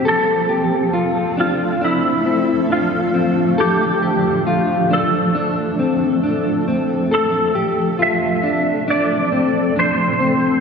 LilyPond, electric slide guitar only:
\new Staff \with { instrumentName = "Electric slide guitar" } { \time 4/4 \key f \major \tempo 4 = 68 a'4. f'8 e'4 f'4 | g'4. a'2 r8 | a'4 e''4 d''4 c''4 | }